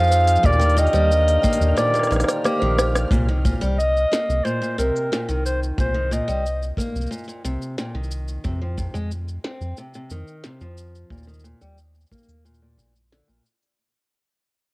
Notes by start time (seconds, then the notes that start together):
Already playing: F2 F3 C4 D#4 G#4 F5 F6
0.03 cabasa
0.07 C5, cabasa
0.12 cabasa
0.24 open hi-hat, cabasa
0.28 cabasa
0.36 cabasa
0.43 D#2 A#2 D3 D#3 A#3 G4 D5, kick, cabasa
0.52 cabasa
0.59 D#3 G5, open hi-hat, cabasa
0.69 open hi-hat
0.77 A#2 D#5, open hi-hat, cabasa
0.87 open hi-hat
0.93 D#2 G3 C5, cabasa
1.11 cabasa
1.28 open hi-hat, cabasa
1.42 A#3 G5, kick, cabasa
1.53 open hi-hat
1.60 D#2, cabasa
1.77 A#2 C5 D5, cross-stick, cabasa
1.94 A#2, cross-stick, open hi-hat, cabasa
1.99 cross-stick
2.03 cross-stick, open hi-hat
2.07 A#1 D#3, cross-stick
2.12 cross-stick, open hi-hat
2.16 cross-stick
2.20 cross-stick, open hi-hat
2.24 C5, cross-stick
2.28 cross-stick, open hi-hat, cabasa
2.44 A#3 G4, cross-stick, cabasa
2.59 A#1 D#3 C5
2.78 C5, cross-stick, cabasa
2.95 cross-stick, open hi-hat, cabasa
3.11 C2 A#2, kick, cabasa
3.29 D#3
3.45 A#2, kick, cabasa
3.61 C2 G3, cabasa
3.78 D#5, cabasa
3.97 cabasa
4.12 A#3, snare, cabasa
4.29 C2, cabasa
4.44 A#2 C5, cabasa
4.62 A#2, cabasa
4.78 C2 C3 A#4, cabasa
4.96 cabasa
5.12 A#2, snare, cabasa
5.29 C2 D#3, cabasa
5.46 C5, cabasa
5.63 cabasa
5.78 C2 A#2 C5, kick, cabasa
5.94 D#3
6.11 A#2 D#5, cabasa
6.28 C2 G3, cabasa
6.46 cabasa
6.63 cabasa
6.77 A#3, kick, cabasa
6.95 C2, cabasa
7.01 cabasa
7.06 cabasa
7.11 A#2, cabasa
7.24 cabasa
7.28 A#2, cabasa
7.45 C2 C3, cabasa
7.62 cabasa
7.78 A#2, snare, cabasa
7.94 C2 D#3
8.03 cabasa
8.11 cabasa
8.28 cabasa
8.44 F2 C3, kick, cabasa
8.61 F3
8.78 C3, kick, cabasa
8.94 F2 G#3, cabasa
9.11 cabasa
9.28 cabasa
9.44 C4, snare
9.61 F2, cabasa
9.77 C3, cabasa
9.94 C3, cabasa
10.10 F2 D#3, cabasa
10.27 cabasa
10.44 C3, snare, cabasa
10.61 F2 F3, cabasa
10.77 cabasa
10.95 cabasa
11.10 D#2 A#2, kick, cabasa
11.18 cabasa
11.23 cabasa
11.27 D#3, cabasa
11.34 cabasa
11.39 cabasa
11.44 A#2, cabasa
11.61 D#2 G3, cabasa
11.78 cabasa
11.95 cabasa
12.01 cabasa
12.06 cabasa
12.11 A#3, kick, cabasa
12.18 cabasa
12.23 cabasa
12.28 D#2, cabasa
12.45 A#2, cabasa
12.54 cabasa
12.62 A#2
12.78 A#1 A#2, kick, cabasa
12.96 cabasa
13.12 D3, snare, cabasa
13.28 A#1 A#2, cabasa
13.46 cabasa
13.62 cabasa